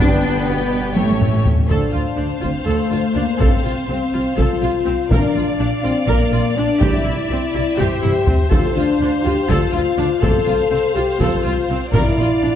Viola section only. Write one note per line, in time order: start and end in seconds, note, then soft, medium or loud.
0.00 0.92 B3 medium
0.97 1.46 A3 soft
1.69 1.92 A4 medium
1.92 2.00 F4 soft
2.17 2.25 D4 soft
2.41 2.49 F4 soft
2.67 2.89 A4 medium
2.90 2.98 F4 soft
3.15 3.23 D4 soft
3.39 3.62 A4 medium
3.64 3.72 F4 soft
3.89 3.97 C4 soft
4.14 4.22 F4 soft
4.37 4.60 A4 medium
4.62 4.70 F4 soft
4.86 4.94 C4 soft
5.11 5.33 A#4 medium
5.36 5.44 F4 soft
5.60 5.68 D4 soft
5.84 5.92 F4 soft
6.08 6.31 A#4 medium
6.32 6.40 F4 soft
6.57 6.65 D4 soft
6.80 7.03 G4 medium
7.04 7.12 E4 soft
7.31 7.39 C4 soft
7.54 7.62 E4 medium
7.77 8.01 G4 medium
8.02 8.10 E4 soft
8.27 8.35 C4 soft
8.50 8.74 A4 medium
8.77 8.85 F4 soft
9.00 9.08 D4 soft
9.24 9.32 F4 soft
9.49 9.72 A4 medium
9.72 9.80 F4 soft
9.97 10.05 D4 medium
10.21 10.45 A4 medium
10.46 10.54 F4 soft
10.71 10.79 C4 soft
10.95 11.03 F4 medium
11.19 11.43 A4 medium
11.43 11.51 F4 soft
11.70 11.78 C4 soft
11.93 12.16 A#4 medium
12.19 12.27 F4 soft
12.43 12.51 D4 soft